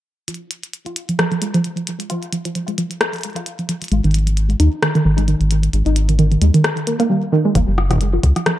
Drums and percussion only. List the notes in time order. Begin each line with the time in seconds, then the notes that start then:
0.28 closed hi-hat
0.34 closed hi-hat
0.51 closed hi-hat
0.63 closed hi-hat
0.73 closed hi-hat
0.86 closed hi-hat
0.96 closed hi-hat
1.09 closed hi-hat
1.19 cross-stick, closed hi-hat
1.32 closed hi-hat
1.42 closed hi-hat
1.54 closed hi-hat
1.64 closed hi-hat
1.77 closed hi-hat
1.87 closed hi-hat
2.00 closed hi-hat
2.10 closed hi-hat
2.23 closed hi-hat
2.33 closed hi-hat
2.45 closed hi-hat
2.55 closed hi-hat
2.68 closed hi-hat
2.78 closed hi-hat
2.91 closed hi-hat
3.01 cross-stick, closed hi-hat
3.13 closed hi-hat
3.16 closed hi-hat
3.18 closed hi-hat
3.21 closed hi-hat
3.23 closed hi-hat
3.30 closed hi-hat
3.33 closed hi-hat
3.36 closed hi-hat
3.46 closed hi-hat
3.59 closed hi-hat
3.69 closed hi-hat
3.82 closed hi-hat
3.84 closed hi-hat
3.88 closed hi-hat
3.92 closed hi-hat
4.04 closed hi-hat
4.11 closed hi-hat
4.14 closed hi-hat
4.19 closed hi-hat
4.27 closed hi-hat
4.37 closed hi-hat
4.50 closed hi-hat
4.60 closed hi-hat
4.83 cross-stick, closed hi-hat
4.95 closed hi-hat
5.18 closed hi-hat
5.28 closed hi-hat
5.41 closed hi-hat
5.51 closed hi-hat
5.63 closed hi-hat
5.73 closed hi-hat
5.86 closed hi-hat
5.96 closed hi-hat
6.09 closed hi-hat
6.19 closed hi-hat
6.32 closed hi-hat
6.42 closed hi-hat
6.54 closed hi-hat
6.64 cross-stick, closed hi-hat
6.77 closed hi-hat
6.87 closed hi-hat
7.00 closed hi-hat
7.55 kick, closed hi-hat
7.78 cross-stick
7.91 kick, cross-stick, closed hi-hat
7.93 kick
7.96 kick
7.98 kick, closed hi-hat
8.23 kick, closed hi-hat
8.36 cross-stick, closed hi-hat
8.46 cross-stick, closed hi-hat